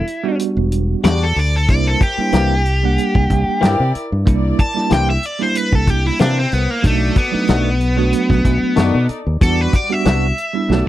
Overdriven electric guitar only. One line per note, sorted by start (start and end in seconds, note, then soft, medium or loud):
0.00 0.37 E4 loud
1.05 1.22 D5 medium
1.23 1.37 A4 loud
1.39 1.55 D5 loud
1.56 1.70 A4 medium
1.70 1.86 D5 loud
1.87 2.01 A4 medium
2.03 3.91 G4 loud
4.60 4.91 A5 loud
4.93 5.09 G5 medium
5.10 5.26 E5 medium
5.26 5.41 D5 medium
5.43 5.56 C5 medium
5.58 5.75 B4 medium
5.75 5.90 A4 medium
5.90 6.07 G4 medium
6.07 6.20 E4 medium
6.21 6.37 D4 medium
6.39 6.53 C4 medium
6.53 6.71 B3 loud
6.71 6.84 A#3 loud
6.87 7.17 A3 loud
7.18 9.06 B3 loud
9.43 9.61 A4 loud
9.61 9.74 B4 medium
9.76 9.92 D5 loud
9.92 10.85 E5 loud